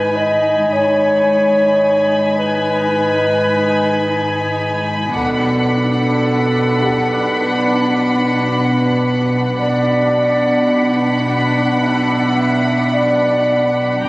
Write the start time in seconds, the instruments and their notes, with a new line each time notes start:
Already playing: double bass section G#1, cello section G#2, viola section D#4, felt piano F#4 F#5, clarinet B4, violin section G#5 B5
0.16 clarinet D#5
0.71 double bass section G#1, cello section G#2, viola section D#4, clarinet C#5, violin section G#5 B5
2.38 clarinet B4
5.15 double bass section B1, cello section B2, viola section D4, clarinet A4, violin section F#5 B5, taiko
6.81 felt piano G4 F#5, taiko
7.38 clarinet B4
9.59 double bass section B1, cello section B2, viola section D4, clarinet D5, violin section F#5 B5
11.82 clarinet E5
12.94 clarinet D5
14.03 double bass section G1, cello section G2, viola section D4, violin section G5 A#5 D6 G6, taiko